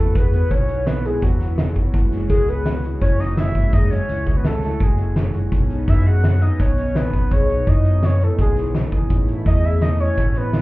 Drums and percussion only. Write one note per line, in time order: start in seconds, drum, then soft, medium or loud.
0.15 kick loud
0.15 closed hi-hat medium
0.33 closed hi-hat medium
0.51 kick medium
0.51 closed hi-hat medium
0.69 closed hi-hat medium
0.87 snare loud
0.87 closed hi-hat medium
1.05 closed hi-hat medium
1.22 kick medium
1.22 closed hi-hat medium
1.40 snare soft
1.40 closed hi-hat medium
1.58 snare loud
1.58 closed hi-hat medium
1.76 kick medium
1.76 closed hi-hat medium
1.94 kick loud
1.94 closed hi-hat medium
2.12 snare soft
2.12 closed hi-hat medium
2.30 kick loud
2.30 closed hi-hat medium
2.48 closed hi-hat medium
2.66 snare loud
2.66 closed hi-hat medium
2.84 closed hi-hat medium
3.02 kick loud
3.02 closed hi-hat medium
3.20 snare soft
3.20 closed hi-hat medium
3.37 snare medium
3.37 closed hi-hat medium
3.55 kick medium
3.55 closed hi-hat medium
3.73 kick loud
3.73 closed hi-hat medium
3.91 snare soft
3.91 closed hi-hat medium
4.09 closed hi-hat medium
4.27 kick medium
4.27 closed hi-hat medium
4.45 snare loud
4.45 closed hi-hat medium
4.63 snare soft
4.63 closed hi-hat medium
4.80 kick loud
4.80 closed hi-hat medium
4.98 closed hi-hat medium
5.16 snare medium
5.16 closed hi-hat medium
5.34 closed hi-hat medium
5.52 kick loud
5.52 closed hi-hat medium
5.70 closed hi-hat medium
5.88 kick loud
5.88 snare soft
5.88 closed hi-hat medium
6.06 closed hi-hat medium
6.24 snare medium
6.24 closed hi-hat medium
6.42 closed hi-hat medium
6.60 kick loud
6.60 snare soft
6.60 closed hi-hat medium
6.78 closed hi-hat medium
6.95 snare medium
6.95 closed hi-hat medium
7.13 kick medium
7.13 closed hi-hat medium
7.31 kick medium
7.31 closed hi-hat medium
7.49 closed hi-hat medium
7.67 kick loud
7.67 closed hi-hat medium
7.85 closed hi-hat medium
8.03 snare medium
8.03 closed hi-hat medium
8.21 closed hi-hat medium
8.39 kick loud
8.39 closed hi-hat medium
8.57 snare soft
8.57 closed hi-hat medium
8.74 snare medium
8.74 closed hi-hat medium
8.92 kick medium
8.92 closed hi-hat medium
9.10 kick loud
9.10 closed hi-hat medium
9.28 closed hi-hat medium
9.46 kick medium
9.46 closed hi-hat medium
9.64 closed hi-hat medium
9.82 snare loud
9.82 closed hi-hat medium
10.00 closed hi-hat medium
10.18 kick medium
10.18 closed hi-hat medium
10.35 closed hi-hat medium
10.53 snare loud
10.53 closed hi-hat medium